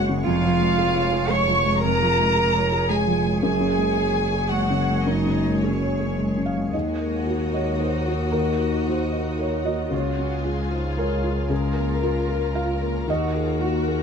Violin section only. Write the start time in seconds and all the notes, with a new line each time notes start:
0.25 F5
1.30 C#6
1.82 A#5
2.89 G#5
3.42 G#5
4.50 F#5
5.04 D#5
5.62 C#5
6.73 F#4
9.92 F4
11.50 A#4
13.08 F#4